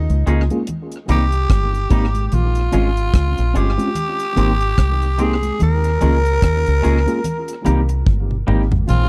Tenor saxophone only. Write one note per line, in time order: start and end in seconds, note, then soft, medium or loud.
0.00 0.69 D#4 medium
1.11 2.27 G4 medium
2.27 2.36 G4 medium
2.34 3.59 F4 medium
3.57 5.23 G4 loud
5.22 5.62 G#4 medium
5.63 8.04 A#4 loud
8.89 9.09 F4 medium